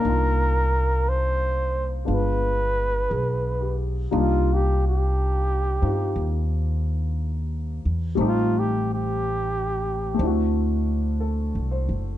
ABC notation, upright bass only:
X:1
M:4/4
L:1/8
Q:"Swing" 1/4=59
K:Cm
V:1 name="Upright bass" clef=bass
C,,4 G,,,2 =B,,,2 | C,,3 G,, E,,3 =E,, | =A,,,4 D,,2- (3D,, C,, ^F,,, |]